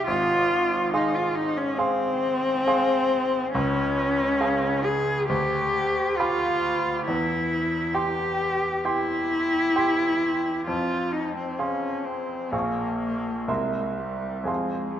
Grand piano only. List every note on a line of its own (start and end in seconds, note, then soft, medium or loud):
0.00 0.10 G4 medium
0.00 0.10 E5 medium
0.00 0.10 C6 medium
0.08 0.91 G#1 medium
0.94 1.76 G#4 soft
0.94 1.76 F5 soft
0.94 1.76 C6 medium
1.79 2.63 G#4 medium
1.79 2.63 F5 medium
1.79 2.64 C6 medium
2.67 3.51 G#4 medium
2.67 3.51 F5 medium
2.67 3.51 C6 medium
3.55 4.39 C#2 medium
4.40 5.25 G#4 medium
4.40 5.26 F5 soft
4.40 5.26 G#5 medium
5.30 6.17 D2 medium
6.19 7.04 G4 soft
6.19 7.04 F5 soft
6.19 7.04 B5 medium
7.08 7.93 E2 medium
7.94 8.81 G4 soft
7.94 8.81 G5 soft
7.94 8.82 C6 soft
8.85 9.72 G4 soft
8.85 9.72 G5 soft
8.85 9.72 C6 soft
9.76 10.64 G4 soft
9.76 10.64 G5 soft
9.76 10.64 C6 soft
10.68 11.57 F2 medium
11.59 12.48 G#4 soft
11.59 12.48 F5 soft
11.59 12.49 C6 soft
12.52 13.45 A#1 soft
12.52 13.44 G#4 soft
12.52 13.45 F5 soft
12.52 13.45 C#6 soft
13.48 14.45 C2 soft
13.48 14.44 A#4 soft
13.48 14.45 E5 soft
13.48 14.45 C6 soft
14.44 15.00 F2 soft
14.44 15.00 G#4 soft
14.44 15.00 F5 soft
14.44 15.00 C6 soft